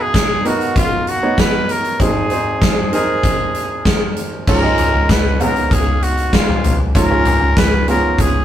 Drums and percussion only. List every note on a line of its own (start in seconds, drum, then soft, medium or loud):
0.14 kick medium
0.14 snare medium
0.14 closed hi-hat medium
0.45 closed hi-hat medium
0.61 closed hi-hat soft
0.76 kick loud
0.76 closed hi-hat medium
1.07 closed hi-hat medium
1.38 kick medium
1.38 snare medium
1.38 closed hi-hat medium
1.69 closed hi-hat medium
1.84 closed hi-hat soft
2.00 kick medium
2.00 closed hi-hat medium
2.30 closed hi-hat medium
2.61 kick medium
2.61 snare medium
2.61 closed hi-hat medium
2.93 closed hi-hat medium
3.23 kick medium
3.23 closed hi-hat medium
3.55 closed hi-hat medium
3.85 kick medium
3.85 snare medium
3.85 closed hi-hat medium
4.16 closed hi-hat medium
4.47 kick loud
4.47 crash medium
4.78 closed hi-hat medium
4.78 floor tom medium
5.09 kick medium
5.09 snare medium
5.09 closed hi-hat medium
5.40 closed hi-hat medium
5.40 floor tom medium
5.56 closed hi-hat soft
5.71 kick loud
5.71 closed hi-hat medium
6.03 closed hi-hat medium
6.17 closed hi-hat soft
6.33 kick medium
6.33 snare loud
6.33 closed hi-hat medium
6.49 floor tom medium
6.64 closed hi-hat medium
6.64 floor tom medium
6.95 kick medium
6.95 closed hi-hat medium
7.25 closed hi-hat medium
7.25 floor tom medium
7.57 kick medium
7.57 snare loud
7.57 closed hi-hat medium
7.88 closed hi-hat medium
8.18 kick medium
8.18 closed hi-hat medium